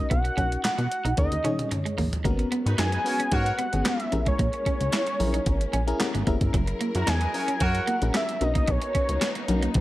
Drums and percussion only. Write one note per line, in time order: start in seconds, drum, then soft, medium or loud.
0.11 kick medium
0.11 closed hi-hat medium
0.25 closed hi-hat soft
0.38 kick medium
0.38 closed hi-hat medium
0.52 closed hi-hat medium
0.64 snare loud
0.64 clap medium
0.64 closed hi-hat loud
0.78 closed hi-hat soft
0.92 closed hi-hat medium
1.05 closed hi-hat soft
1.17 kick loud
1.17 closed hi-hat medium
1.17 high tom medium
1.32 closed hi-hat medium
1.45 closed hi-hat medium
1.45 mid tom medium
1.59 closed hi-hat medium
1.59 mid tom medium
1.71 closed hi-hat medium
1.71 mid tom medium
1.86 closed hi-hat soft
1.98 floor tom medium
1.98 open hi-hat medium
2.13 closed hi-hat medium
2.13 floor tom medium
2.25 kick medium
2.25 closed hi-hat medium
2.25 muted conga soft
2.39 closed hi-hat soft
2.52 closed hi-hat medium
2.52 muted conga soft
2.67 closed hi-hat medium
2.78 snare loud
2.78 clap medium
2.78 closed hi-hat medium
2.78 high conga medium
2.92 closed hi-hat medium
3.06 open hi-hat medium
3.20 closed hi-hat medium
3.32 kick loud
3.32 closed hi-hat loud
3.46 closed hi-hat medium
3.59 closed hi-hat medium
3.59 muted conga medium
3.73 closed hi-hat soft
3.85 snare loud
3.85 clap medium
3.85 closed hi-hat loud
3.85 high conga medium
4.00 closed hi-hat medium
4.12 closed hi-hat medium
4.12 high conga medium
4.26 kick medium
4.26 closed hi-hat medium
4.39 kick loud
4.39 closed hi-hat medium
4.39 muted conga soft
4.53 closed hi-hat soft
4.66 kick medium
4.66 closed hi-hat medium
4.66 muted conga soft
4.81 closed hi-hat medium
4.92 snare loud
4.92 clap loud
4.92 closed hi-hat loud
4.92 high conga medium
5.07 closed hi-hat medium
5.20 open hi-hat medium
5.20 low conga medium
5.34 closed hi-hat medium
5.46 kick loud
5.46 closed hi-hat loud
5.61 closed hi-hat medium
5.73 closed hi-hat medium
5.73 muted conga medium
5.88 closed hi-hat soft
6.00 snare loud
6.00 clap medium
6.00 closed hi-hat medium
6.00 high conga medium
6.15 closed hi-hat medium
6.27 kick medium
6.27 closed hi-hat medium
6.27 high conga medium
6.41 kick medium
6.41 closed hi-hat medium
6.54 kick loud
6.54 closed hi-hat medium
6.54 muted conga medium
6.67 closed hi-hat medium
6.81 closed hi-hat medium
6.95 closed hi-hat medium
7.07 snare loud
7.07 clap medium
7.07 closed hi-hat medium
7.07 high conga medium
7.21 closed hi-hat medium
7.34 open hi-hat medium
7.48 closed hi-hat medium
7.60 kick loud
7.60 closed hi-hat loud
7.75 closed hi-hat medium
7.88 closed hi-hat medium
7.88 muted conga medium
8.02 closed hi-hat medium
8.14 snare loud
8.14 clap medium
8.14 closed hi-hat loud
8.14 high conga medium
8.29 closed hi-hat medium
8.41 closed hi-hat medium
8.41 high conga medium
8.55 kick medium
8.55 closed hi-hat medium
8.68 kick medium
8.68 closed hi-hat medium
8.68 muted conga medium
8.82 closed hi-hat medium
8.95 kick medium
8.95 closed hi-hat medium
8.95 muted conga soft
9.09 closed hi-hat medium
9.21 snare loud
9.21 clap loud
9.21 closed hi-hat medium
9.21 high conga medium
9.35 closed hi-hat medium
9.48 closed hi-hat medium
9.48 low conga medium
9.62 closed hi-hat medium
9.74 kick loud
9.74 closed hi-hat medium
9.74 low conga medium